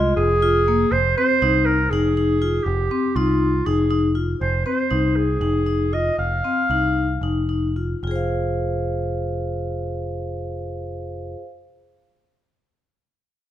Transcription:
Already playing: C2 G#3 F4
0.16 F1 G#4
0.42 F4
0.68 A#3
0.92 F1 C5
1.17 C4 C5
1.42 C2 D#4
1.65 A#4
1.90 F1 D#4 G#4
2.17 D#4
2.42 F4
2.64 F1 G4
2.91 C4
3.15 C2 D#4 F4
3.66 F1 D#4 G#4
3.91 D#4
4.15 F4
4.41 F1 C5
4.66 C4 C5
4.91 C2 D#4
5.16 G#4
5.41 F1 D#4
5.66 D#4
5.93 F4 D#5
6.18 F1 F5
6.44 C4
6.70 C2 D#4
7.21 F1 D#4
7.49 D#4
7.76 F4
8.03 F1 F4
8.07 G#4 C5
8.16 F5

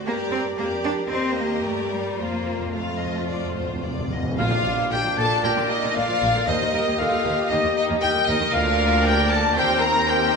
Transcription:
0.05 G2 A#3 G4 A#4 D5
0.32 C4
0.57 F2 A#3 G4 A#4 D5
0.84 D4
1.10 D#2 C4 G4 A#4 D#5
1.37 A#3
1.64 G2 A3 D5
1.91 G3
2.18 F2 A#3 F4 C5
2.27 F2
2.43 F2
2.50 F2
2.59 F2
2.66 F2
2.72 F2 A3 F4 C5 F5
2.82 F2
2.89 F2
2.98 F2 D#5
3.05 F2
3.13 F2
3.21 F2
3.27 F2 D5
3.38 F2
3.45 F2
3.52 F2 C5
3.60 F2
3.67 F2
3.75 F2
3.83 F2 D5
3.90 F2
3.99 F2
4.07 F2
4.11 F2 D#5
4.23 F2
4.31 F2
4.37 A#1 A#2 A#3 D4 F4 D5 F5
4.51 A#2 D3
4.65 A#1 A#2 F3
4.79 A#2 A#3
4.91 A#1 A#2 D3 G4 G5
5.05 A#2 F3
5.17 A#1 A#2 A#3 A4 A5
5.43 A#1 A#2 A#3 G4 A#4 G5
5.57 A#2 D3
5.70 D#4 D#5
5.83 A#2 A#3
5.96 A#1 A#2 D3 F4 D5 F5
6.09 A#2 F3
6.22 A#1 A#2 A#3
6.35 A#2 D3
6.48 D#2 A#3 D#4 G4 C5 D#5
6.61 D#2 D#3
6.73 D#2 G3 A#4
6.86 D#2 A#3
6.99 D#2 D#3 F4 A4 F5
7.11 D#2 G3
7.24 D#2 A#3 G4
7.50 D#2 A#3 D#4 D#5
7.63 D#2 D#3
7.76 D#4 D#5
7.89 D#2 A#3
8.02 D#2 D#3 G4 A#4 G5
8.15 D#2 G3
8.27 D#2 A#3 D#4 D#5
8.41 D#2 D#3
8.53 D2 A#3 D4 F4 A#4 D5 F5
9.04 G4 G5
9.30 A4 A5
9.55 D#2 C4 D#4 G4 A#4 C5 G5
9.81 A#4 A#5
10.07 C4 G4 A#4 G5

